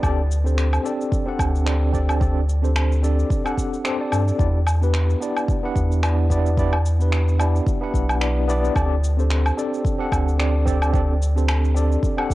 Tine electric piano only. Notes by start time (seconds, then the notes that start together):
0.01 C4 D4 G4 A4 D5
0.44 C4 D4 G4 A4 C5
0.83 C4 D4 G4 A4 D5
1.26 C4 D4 G4 A4 F#5
1.65 C4 D4 G4 A4 D5
1.93 C4 D4 G4 A4 D5
2.20 C4 D4 G4 A4 D5
2.62 C4 D4 G4 A4 C5
3.02 C4 D4 G4 A4 D5
3.44 C4 D4 G4 A4 F#5
3.84 C4 D4 G4 A4 C5
3.99 C4 D4 G4 A4 D5
4.26 C4 D4 G4 A4 D5
4.38 B3 D4 E4 G4 D5
4.81 B3 D4 E4 G4 B4
5.21 B3 D4 E4 G4 D5
5.63 B3 D4 E4 G4 F#5
6.02 B3 D4 E4 G4 D5
6.29 B3 D4 E4 G4 D5
6.57 B3 D4 E4 G4 D5
6.99 B3 D4 E4 G4 B4
7.38 B3 D4 E4 G4 D5
7.81 B3 D4 E4 G4 F#5
8.20 B3 D4 E4 G4 D5
8.48 B3 D4 E4 G4 D5
8.75 C4 D4 G4 A4 D5
9.17 C4 D4 G4 A4 C5
9.57 C4 D4 G4 A4 D5
9.98 C4 D4 G4 A4 F#5
10.38 C4 D4 G4 A4 D5
10.65 C4 D4 G4 A4 D5
10.93 C4 D4 G4 A4 D5
11.35 C4 D4 G4 A4 C5
11.74 C4 D4 G4 A4 D5
12.17 C4 D4 G4 A4 F#5